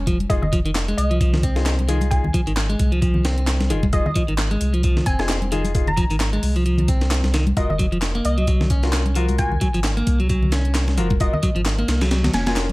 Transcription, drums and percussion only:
0.07 kick, closed hi-hat
0.20 closed hi-hat, high conga
0.30 kick, closed hi-hat
0.43 low conga
0.53 kick, closed hi-hat
0.65 closed hi-hat
0.75 snare, clap, closed hi-hat
0.88 closed hi-hat
0.98 closed hi-hat
1.11 closed hi-hat
1.21 kick, closed hi-hat
1.33 snare, low conga
1.43 kick, closed hi-hat
1.56 snare, closed hi-hat
1.66 snare, clap, closed hi-hat
1.79 closed hi-hat, high conga
1.89 closed hi-hat
2.01 closed hi-hat, muted conga, high conga
2.11 kick, closed hi-hat
2.24 low conga
2.34 kick, closed hi-hat
2.47 closed hi-hat
2.57 snare, clap, closed hi-hat
2.70 closed hi-hat
2.79 kick, closed hi-hat, muted conga
2.92 closed hi-hat
3.02 kick, closed hi-hat
3.14 low conga
3.25 snare, closed hi-hat
3.38 closed hi-hat
3.47 snare, clap, closed hi-hat
3.60 snare, closed hi-hat, high conga
3.70 closed hi-hat
3.83 kick, closed hi-hat, high conga
3.93 kick, closed hi-hat
4.06 low conga
4.15 kick, closed hi-hat
4.28 closed hi-hat
4.38 snare, clap, closed hi-hat
4.51 closed hi-hat
4.61 closed hi-hat
4.74 closed hi-hat
4.83 kick, closed hi-hat
4.97 snare, low conga
5.06 kick, closed hi-hat
5.19 snare, closed hi-hat
5.29 snare, clap, closed hi-hat
5.42 closed hi-hat, high conga
5.52 closed hi-hat
5.64 closed hi-hat, muted conga, high conga
5.75 kick, closed hi-hat
5.87 closed hi-hat, low conga
5.97 kick, closed hi-hat
6.10 closed hi-hat
6.20 snare, clap, closed hi-hat
6.33 closed hi-hat
6.43 closed hi-hat, open hi-hat, muted conga
6.56 closed hi-hat
6.66 closed hi-hat
6.78 closed hi-hat, muted conga, low conga
6.88 kick, closed hi-hat
7.01 snare, closed hi-hat
7.11 snare, clap, closed hi-hat
7.23 snare, closed hi-hat, high conga
7.34 snare, closed hi-hat
7.47 closed hi-hat, high conga
7.57 kick, closed hi-hat
7.70 low conga
7.79 kick, closed hi-hat
7.92 closed hi-hat
8.02 snare, clap, closed hi-hat
8.15 closed hi-hat
8.25 closed hi-hat
8.38 closed hi-hat
8.47 kick, closed hi-hat
8.61 snare, low conga
8.70 kick, closed hi-hat
8.83 snare, closed hi-hat
8.93 snare, clap, closed hi-hat
9.06 closed hi-hat, high conga
9.15 closed hi-hat
9.29 closed hi-hat, muted conga, high conga
9.38 kick, closed hi-hat
9.52 low conga
9.61 kick, closed hi-hat
9.74 closed hi-hat
9.84 snare, clap, closed hi-hat
9.97 closed hi-hat
10.07 kick, closed hi-hat, muted conga
10.20 closed hi-hat
10.29 kick, closed hi-hat
10.43 low conga
10.52 snare, closed hi-hat
10.65 closed hi-hat
10.75 snare, clap, closed hi-hat
10.87 snare, closed hi-hat, high conga
10.98 closed hi-hat
11.10 kick, closed hi-hat, high conga
11.20 kick, closed hi-hat
11.34 low conga
11.43 kick, closed hi-hat
11.56 closed hi-hat
11.66 snare, clap, closed hi-hat
11.78 closed hi-hat
11.88 snare, closed hi-hat
12.01 snare, closed hi-hat
12.11 snare, closed hi-hat
12.24 snare, closed hi-hat, low conga
12.34 snare, closed hi-hat
12.46 snare, closed hi-hat
12.56 snare, clap, closed hi-hat

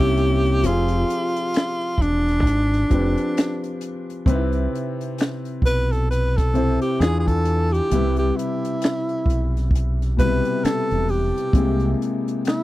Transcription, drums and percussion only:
0.00 kick, closed hi-hat
0.17 closed hi-hat
0.46 closed hi-hat
0.63 closed hi-hat
0.88 closed hi-hat
1.10 closed hi-hat
1.36 closed hi-hat
1.54 finger snap, snare, closed hi-hat
1.81 closed hi-hat
1.98 kick
2.02 closed hi-hat
2.28 snare, closed hi-hat
2.43 kick
2.47 closed hi-hat
2.73 snare, closed hi-hat
2.91 kick, closed hi-hat
3.17 closed hi-hat
3.37 finger snap, snare, closed hi-hat
3.64 closed hi-hat
3.81 closed hi-hat
4.10 closed hi-hat
4.26 kick, closed hi-hat
4.53 closed hi-hat
4.75 closed hi-hat
5.01 closed hi-hat
5.18 finger snap, snare, closed hi-hat
5.45 closed hi-hat
5.62 kick
5.66 closed hi-hat
5.92 snare, closed hi-hat
6.12 closed hi-hat
6.38 kick, snare, closed hi-hat
6.55 closed hi-hat
6.82 closed hi-hat
7.01 finger snap, snare, closed hi-hat
7.28 kick, closed hi-hat
7.45 closed hi-hat
7.74 closed hi-hat
7.91 closed hi-hat
8.16 closed hi-hat
8.39 closed hi-hat
8.65 closed hi-hat
8.82 finger snap, snare, closed hi-hat
9.09 closed hi-hat
9.26 kick
9.30 closed hi-hat
9.57 snare, closed hi-hat
9.71 kick
9.75 closed hi-hat
10.02 snare, closed hi-hat
10.19 kick, closed hi-hat
10.45 closed hi-hat
10.65 finger snap, snare, closed hi-hat
10.91 closed hi-hat
11.09 open hi-hat
11.37 closed hi-hat
11.53 kick, closed hi-hat
11.80 closed hi-hat
12.02 closed hi-hat
12.28 closed hi-hat
12.45 finger snap, snare, closed hi-hat

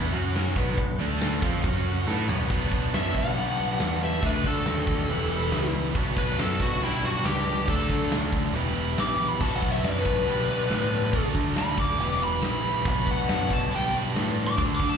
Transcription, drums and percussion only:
0.35 snare, open hi-hat
0.56 kick
0.78 kick, open hi-hat
1.21 snare, open hi-hat
1.33 snare
1.42 kick, crash
1.64 kick
2.08 snare
2.29 mid tom
2.40 floor tom
2.50 kick, open hi-hat
2.72 kick
2.93 snare, open hi-hat
3.05 snare
3.15 kick
3.37 open hi-hat
3.79 snare, open hi-hat
4.23 kick, open hi-hat
4.44 kick
4.65 snare, open hi-hat
4.77 snare
4.87 kick
5.08 open hi-hat
5.51 snare, open hi-hat
5.95 kick, open hi-hat
6.17 kick
6.28 snare
6.38 snare, open hi-hat
6.60 kick
6.81 open hi-hat
7.25 snare, open hi-hat
7.68 kick, open hi-hat
7.90 kick
8.01 snare
8.11 snare, open hi-hat
8.33 kick
8.54 open hi-hat
8.97 snare, open hi-hat
9.41 kick, crash
9.62 kick
9.84 snare, open hi-hat
10.05 kick
10.27 open hi-hat
10.70 snare, open hi-hat
11.13 kick, open hi-hat
11.35 kick
11.47 snare
11.56 snare, open hi-hat
11.68 snare
11.78 kick
11.99 open hi-hat
12.42 snare, open hi-hat
12.85 kick, open hi-hat
13.07 kick
13.28 snare, open hi-hat
13.51 kick
13.72 open hi-hat
14.16 snare, open hi-hat
14.58 kick, open hi-hat
14.80 kick
14.92 snare

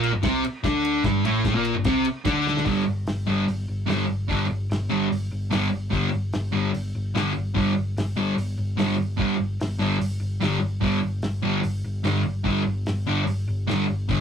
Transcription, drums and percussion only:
0.03 ride
0.23 kick, snare, ride
0.44 ride
0.64 kick, snare, ride
0.85 ride
1.04 kick, snare, ride
1.25 ride
1.44 kick, snare, ride
1.65 ride
1.84 kick, snare, ride
2.05 ride
2.25 kick, snare, ride
2.47 snare
2.57 snare
2.66 kick, open hi-hat
3.07 snare, open hi-hat
3.48 open hi-hat
3.89 snare, open hi-hat
4.30 kick, open hi-hat
4.71 snare, open hi-hat
5.12 open hi-hat
5.52 snare, open hi-hat
5.92 kick, open hi-hat
6.33 snare, open hi-hat
6.74 open hi-hat
7.15 snare, open hi-hat
7.56 kick, open hi-hat
7.97 snare, open hi-hat
8.38 open hi-hat
8.79 snare, open hi-hat
9.19 kick, open hi-hat
9.61 snare, open hi-hat
10.01 open hi-hat
10.42 snare, open hi-hat
10.82 kick, open hi-hat
11.22 snare, open hi-hat
11.63 open hi-hat
12.04 snare, open hi-hat
12.45 kick, open hi-hat
12.86 snare, open hi-hat
13.27 open hi-hat
13.69 snare, open hi-hat
14.09 kick, open hi-hat

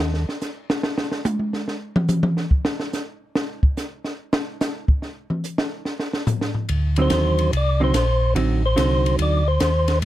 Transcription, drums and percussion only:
0.14 snare
0.29 snare
0.41 snare, hi-hat pedal
0.70 snare
0.83 snare
0.98 snare
1.12 snare
1.25 hi-hat pedal, high tom
1.39 high tom
1.53 snare
1.68 snare
1.96 mid tom
2.08 hi-hat pedal, mid tom
2.23 mid tom
2.37 snare
2.51 kick
2.65 snare
2.80 snare
2.93 snare, hi-hat pedal
3.35 snare
3.63 kick
3.77 snare, hi-hat pedal
4.04 snare
4.33 snare
4.61 snare, hi-hat pedal
4.88 kick
5.02 snare
5.30 mid tom
5.44 hi-hat pedal
5.58 snare
5.85 snare
6.00 snare
6.13 snare
6.27 floor tom, hi-hat pedal
6.41 snare
6.55 floor tom
6.69 ride
6.96 ride
7.10 snare, hi-hat pedal, ride
7.38 ride
7.53 ride
7.94 snare, hi-hat pedal, ride
8.36 ride
8.77 snare, hi-hat pedal, ride
9.06 ride
9.19 ride
9.60 snare, hi-hat pedal, ride
9.88 snare, ride
10.02 ride

